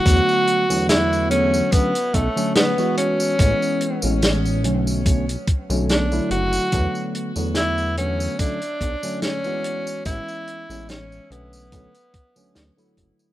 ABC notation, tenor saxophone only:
X:1
M:4/4
L:1/8
Q:"Swing 16ths" 1/4=72
K:Bdor
V:1 name="Tenor saxophone"
F2 E C B, A, B, C- | C2 z4 D F- | F z E C D2 C2 | E2 C B,4 z |]